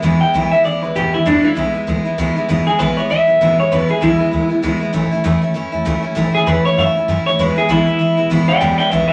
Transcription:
0.02 E1 E2 B2 E3 G#3 B3 E4
0.20 E3 G#3 B3 E4 G5, muted upright bass stroke
0.33 B1 E2 B2 E3 G#3 B3 E4
0.51 E3 G#3 B3 E4 E5, muted upright bass stroke
0.64 D2 E3 G#3 B3 E4 D5
0.82 B1 E3 G#3 B3 E4 B4
0.95 G#1 E2 B2 E3 G#3 B3 E4 G4
1.12 E3 G#3 B3 E4, muted upright bass stroke
1.25 E1 E2 B2 E3 G#3 B3 D4 E4
1.42 E3 G#3 B3 E4, muted upright bass stroke
1.55 B1 E2 B2 E3 G#3 B3 E4
1.74 E3 G#3 B3 E4, muted upright bass stroke
1.87 D2 E3 G#3 B3 E4
2.04 E3 G#3 B3 E4, muted upright bass stroke
2.18 C#2 E2 B2 E3 G#3 B3 E4
2.36 E3 G#3 B3 E4, muted upright bass stroke
2.48 E1 E2 B2 E3 G#3 B3 E4
2.66 E3 G#3 B3 E4 G#4, muted upright bass stroke
2.79 B1 E2 B2 E3 G#3 B3 E4 B4
2.97 E3 G#3 B3 E4 C#5, muted upright bass stroke
3.10 D2 E3 G#3 B3 E4 E5
3.27 B1 E3 G#3 B3 E4
3.40 G#1 E2 B2 E3 G#3 B3 E4
3.58 E3 G#3 B3 E4 C#5, muted upright bass stroke
3.71 E1 E2 B2 E3 G#3 B3 E4 B4
3.89 E3 G#3 B3 E4 G#4, muted upright bass stroke
4.01 B1 E2 B2 E3 G#3 B3 E4
4.18 E3 G#3 B3 E4, muted upright bass stroke
4.31 D2 E3 G#3 B3 E4
4.49 E3 G#3 B3 E4, muted upright bass stroke
4.62 C#2 E2 B2 E3 G#3 B3 E4
4.80 E3 G#3 B3 E4, muted upright bass stroke
4.93 A1 A2 E3 A3 C#4 E4
5.11 A3 C#4 E4, muted upright bass stroke
5.24 E2 A2 E3 A3 C#4 E4
5.42 A3 C#4 E4, muted upright bass stroke
5.54 F#2 E3 A3 C#4 E4
5.72 E2 A3 C#4 E4
5.85 C#2 A2 E3 A3 C#4 E4
6.02 A3 C#4 E4, muted upright bass stroke
6.15 A1 A2 E3 A3 C#4 E4
6.33 A3 C#4 E4 G#4, muted upright bass stroke
6.46 E2 A2 E3 A3 C#4 E4 B4
6.64 A3 C#4 E4 C#5, muted upright bass stroke
6.77 F#2 E3 A3 C#4 E4 E5
6.95 A3 C#4 E4, muted upright bass stroke
7.08 F#2 A2 E3 A3 C#4 E4
7.25 A3 C#4 E4 C#5, muted upright bass stroke
7.38 E1 E2 B2 E3 G#3 B3 E4 B4
7.56 E3 G#3 B3 E4 G#4, muted upright bass stroke
7.68 B1 E2 B2 E3 G#3 B3 E4
7.86 E3 G#3 B3 E4, muted upright bass stroke
7.99 D2 E3 G#3 B3 E4
8.17 B1 E3 G#3 B3 E4
8.30 G#1 E2 B2 E3 G#3 B3 E4
8.47 E3 G#3 B3 E4 D5 G5, muted upright bass stroke
8.60 E1 E2 B2 E3 G#3 B3 E4 D5 G5
8.78 E3 G#3 B3 E4 D5 G5, muted upright bass stroke
8.90 B1 E2 B2 E3 G#3 B3 E4 B4 E5
9.08 B3 E4 B4 E5, muted upright bass stroke

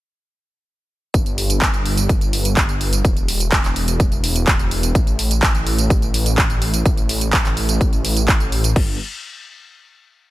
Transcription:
1.14 G1, kick, closed hi-hat, tambourine
1.26 closed hi-hat, tambourine
1.38 open hi-hat
1.50 closed hi-hat, tambourine
1.62 kick, clap, closed hi-hat, tambourine
1.74 closed hi-hat, tambourine
1.86 open hi-hat
1.97 closed hi-hat, tambourine
2.09 kick, closed hi-hat, tambourine
2.21 closed hi-hat, tambourine
2.33 open hi-hat
2.45 closed hi-hat, tambourine
2.57 kick, clap, closed hi-hat, tambourine
2.69 closed hi-hat, tambourine
2.81 open hi-hat
2.93 closed hi-hat, tambourine
3.05 E1, kick, closed hi-hat, tambourine
3.17 closed hi-hat, tambourine
3.28 open hi-hat
3.40 closed hi-hat, tambourine
3.52 kick, clap, closed hi-hat, tambourine
3.64 clap, closed hi-hat, tambourine
3.76 open hi-hat
3.88 closed hi-hat, tambourine
4.00 kick, closed hi-hat, tambourine
4.12 closed hi-hat, tambourine
4.24 open hi-hat
4.36 closed hi-hat, tambourine
4.47 kick, clap, closed hi-hat, tambourine
4.59 closed hi-hat, tambourine
4.71 open hi-hat
4.83 closed hi-hat, tambourine
4.95 A1, kick, closed hi-hat, tambourine
5.07 closed hi-hat, tambourine
5.19 open hi-hat
5.31 closed hi-hat, tambourine
5.43 kick, clap, closed hi-hat, tambourine
5.55 closed hi-hat, tambourine
5.67 open hi-hat
5.79 closed hi-hat, tambourine
5.90 kick, closed hi-hat, tambourine
6.02 closed hi-hat, tambourine
6.14 open hi-hat
6.26 closed hi-hat, tambourine
6.38 kick, clap, closed hi-hat, tambourine
6.50 closed hi-hat, tambourine
6.62 open hi-hat
6.74 closed hi-hat, tambourine
6.86 A1, kick, closed hi-hat, tambourine
6.97 closed hi-hat, tambourine
7.09 open hi-hat
7.21 closed hi-hat, tambourine
7.33 kick, clap, closed hi-hat, tambourine
7.45 clap, closed hi-hat, tambourine
7.57 open hi-hat
7.69 closed hi-hat, tambourine
7.81 kick, closed hi-hat, tambourine
7.93 closed hi-hat, tambourine
8.05 open hi-hat
8.17 closed hi-hat, tambourine
8.28 kick, clap, closed hi-hat, tambourine
8.40 closed hi-hat, tambourine
8.52 open hi-hat
8.64 closed hi-hat, tambourine
8.76 G1, kick, crash

